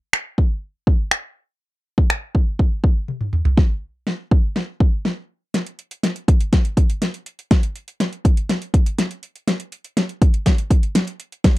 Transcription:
0.13 finger snap loud
0.38 kick loud
0.87 kick medium
1.11 finger snap loud
1.98 kick medium
2.10 finger snap loud
2.35 kick medium
2.59 kick medium
2.84 kick medium
3.08 high tom medium
3.21 mid tom medium
3.33 mid tom medium
3.45 floor tom medium
3.58 kick loud
3.58 snare soft
4.07 snare medium
4.31 kick medium
4.56 snare medium
4.80 kick medium
5.05 snare medium
5.54 snare medium
5.54 closed hi-hat medium
5.66 closed hi-hat medium
5.79 closed hi-hat medium
5.91 closed hi-hat medium
6.03 snare medium
6.03 closed hi-hat medium
6.16 closed hi-hat soft
6.28 kick loud
6.28 closed hi-hat medium
6.40 closed hi-hat medium
6.53 kick medium
6.53 snare medium
6.53 closed hi-hat medium
6.65 closed hi-hat medium
6.77 kick medium
6.77 closed hi-hat medium
6.90 closed hi-hat soft
7.02 snare medium
7.02 closed hi-hat loud
7.14 closed hi-hat medium
7.26 closed hi-hat medium
7.39 closed hi-hat soft
7.51 kick loud
7.51 snare medium
7.51 closed hi-hat medium
7.63 closed hi-hat medium
7.76 closed hi-hat medium
7.88 closed hi-hat medium
8.00 snare medium
8.00 closed hi-hat medium
8.13 closed hi-hat soft
8.25 kick loud
8.25 closed hi-hat medium
8.37 closed hi-hat medium
8.49 snare medium
8.49 closed hi-hat medium
8.62 closed hi-hat medium
8.74 kick medium
8.74 closed hi-hat medium
8.86 closed hi-hat medium
8.99 snare medium
8.99 closed hi-hat loud
9.11 closed hi-hat medium
9.23 closed hi-hat medium
9.36 closed hi-hat soft
9.48 snare medium
9.48 closed hi-hat medium
9.60 closed hi-hat medium
9.72 closed hi-hat medium
9.84 closed hi-hat medium
9.97 snare medium
9.97 closed hi-hat medium
10.09 closed hi-hat soft
10.22 kick loud
10.22 closed hi-hat medium
10.34 closed hi-hat medium
10.46 kick medium
10.46 snare medium
10.46 closed hi-hat medium
10.58 closed hi-hat medium
10.71 kick medium
10.71 closed hi-hat medium
10.83 closed hi-hat medium
10.95 snare medium
10.95 closed hi-hat loud
11.07 closed hi-hat medium
11.20 closed hi-hat medium
11.32 closed hi-hat soft
11.44 kick loud
11.44 snare medium
11.44 closed hi-hat medium

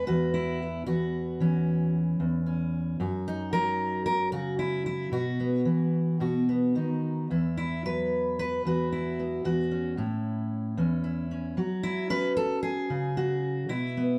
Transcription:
0.00 0.85 G#3 medium
0.00 0.33 B4 loud
0.07 0.86 E2 medium
0.07 0.61 F#4 medium
0.34 0.86 E4 medium
0.62 1.41 B3 soft
0.86 2.19 E2 medium
0.86 1.94 F#4 medium
1.40 3.03 E3 medium
1.40 2.45 C#4 soft
2.20 2.99 E2 medium
2.46 2.97 C#4 soft
3.00 5.09 F#2 medium
3.00 3.52 F#4 soft
3.28 4.07 D#4 medium
3.53 5.65 F#3 medium
3.53 4.05 A#4 loud
4.06 4.32 A#4 loud
4.32 5.10 C#3 medium
4.32 4.58 F#4 medium
4.59 4.85 E4 medium
4.86 5.12 E4 medium
5.12 5.65 B2 medium
5.12 6.20 F#4 medium
5.40 6.48 B3 soft
5.65 6.16 E3 medium
6.20 6.75 B2 medium
6.20 7.27 F#4 medium
6.49 7.27 B3 soft
6.75 7.27 D#3 medium
6.75 7.27 D#4 soft
7.30 8.64 E2 medium
7.30 7.56 E4 soft
7.57 7.85 E4 medium
7.85 9.42 F#3 medium
7.85 8.38 B4 medium
8.39 8.92 B4 medium
8.65 9.43 E2 medium
8.65 9.44 F#4 medium
8.92 9.45 E4 medium
9.19 9.42 B3 soft
9.45 9.98 E2 medium
9.45 9.98 F#4 medium
9.71 10.76 C#4 soft
9.97 10.77 A2 medium
9.97 11.03 E4 soft
10.77 11.57 E2 medium
10.77 11.30 C#4 soft
11.04 11.54 E4 soft
11.31 11.54 C#4 soft
11.57 13.66 F#3 medium
11.57 13.16 F#4 soft
11.83 12.10 E4 medium
12.10 13.66 C#4 medium
12.10 12.36 B4 loud
12.37 12.62 A4 loud
12.63 13.69 G#4 loud
12.90 13.67 C#3 medium
13.17 13.70 F#4 medium
13.69 14.19 B2 medium
13.69 14.19 E4 medium
13.97 14.19 B3 soft

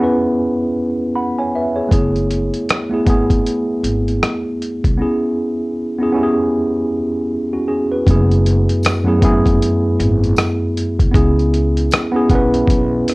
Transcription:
0.00 1.90 B3 medium
0.00 1.93 C#4 medium
0.00 0.03 E4 medium
0.00 1.12 E4 medium
0.00 1.76 G#4 medium
0.00 0.78 B4 medium
1.15 1.37 F#5 medium
1.15 1.51 B5 medium
1.38 1.53 C#5 medium
1.38 1.53 G#5 medium
1.55 1.76 B4 medium
1.55 1.90 E5 medium
1.76 1.92 G#4 medium
1.76 2.12 C#5 medium
1.89 2.49 F#1 medium
1.89 2.61 A3 medium
1.89 2.61 B3 medium
1.89 2.62 E4 medium
1.89 kick medium
1.89 closed hi-hat medium
1.93 2.63 G#4 medium
2.16 closed hi-hat soft
2.31 closed hi-hat medium
2.54 closed hi-hat soft
2.69 cross-stick loud
2.69 closed hi-hat medium
2.90 3.01 A3 medium
2.90 3.02 B3 medium
2.90 3.03 E4 medium
2.94 3.04 G#4 medium
3.05 3.41 G#1 medium
3.05 4.18 A3 medium
3.05 4.18 B3 medium
3.05 4.19 E4 medium
3.05 kick medium
3.05 closed hi-hat medium
3.10 4.20 G#4 loud
3.30 kick medium
3.30 closed hi-hat soft
3.47 closed hi-hat medium
3.83 4.18 G#1 medium
3.83 closed hi-hat medium
4.08 closed hi-hat soft
4.23 cross-stick loud
4.23 closed hi-hat medium
4.62 closed hi-hat medium
4.84 4.98 C2 medium
4.84 kick medium
4.84 closed hi-hat soft
4.98 5.69 B3 medium
4.98 5.70 C#4 medium
4.98 5.71 E4 medium
5.02 5.71 G#4 medium
5.99 6.10 B3 medium
5.99 6.11 C#4 medium
5.99 6.11 E4 medium
6.03 6.12 G#4 medium
6.12 7.25 B3 medium
6.12 6.91 C#4 medium
6.12 6.92 E4 medium
6.17 6.23 G4 medium
6.23 6.96 G#4 medium
7.53 7.67 C#4 medium
7.53 7.68 F#4 medium
7.68 7.90 C#4 medium
7.68 7.90 G#4 medium
7.92 8.28 F#4 soft
7.92 8.28 B4 medium
8.07 8.64 F#1 loud
8.07 8.77 F#2 medium
8.07 8.78 A3 medium
8.07 8.78 B3 medium
8.07 8.79 E4 medium
8.07 kick loud
8.07 closed hi-hat medium
8.11 8.79 G#4 medium
8.31 closed hi-hat soft
8.46 closed hi-hat medium
8.69 closed hi-hat soft
8.83 cross-stick loud
8.83 closed hi-hat medium
8.83 tambourine medium
9.04 9.16 F#2 medium
9.04 9.17 A3 medium
9.04 9.17 B3 medium
9.04 9.18 E4 medium
9.08 9.18 G#4 medium
9.20 9.57 G#1 medium
9.20 10.33 F#2 medium
9.20 10.33 A3 medium
9.20 10.34 B3 medium
9.20 10.34 E4 medium
9.20 kick loud
9.20 closed hi-hat medium
9.25 10.35 G#4 loud
9.45 kick loud
9.45 closed hi-hat medium
9.62 closed hi-hat medium
9.99 10.34 G#1 loud
9.99 closed hi-hat medium
10.24 closed hi-hat soft
10.36 cross-stick loud
10.36 closed hi-hat medium
10.36 tambourine medium
10.77 closed hi-hat medium
10.99 11.13 C2 medium
10.99 kick medium
10.99 closed hi-hat soft
11.11 11.87 C#2 loud
11.11 11.84 B3 medium
11.11 11.84 C#4 medium
11.11 11.85 E4 medium
11.11 kick loud
11.15 11.86 G#4 medium
11.15 closed hi-hat medium
11.39 closed hi-hat soft
11.54 closed hi-hat medium
11.77 closed hi-hat medium
11.91 cross-stick loud
11.91 closed hi-hat medium
11.91 tambourine medium
12.12 12.24 B3 medium
12.12 12.25 C#4 medium
12.12 12.26 E4 medium
12.16 12.26 G#4 loud
12.30 12.65 B1 medium
12.30 13.14 B3 medium
12.30 13.14 C#4 medium
12.30 13.14 E4 medium
12.30 kick loud
12.30 closed hi-hat medium
12.35 13.09 B4 loud
12.54 closed hi-hat medium
12.67 13.03 B1 medium
12.67 kick medium
12.67 closed hi-hat medium
13.08 cross-stick soft
13.08 closed hi-hat medium

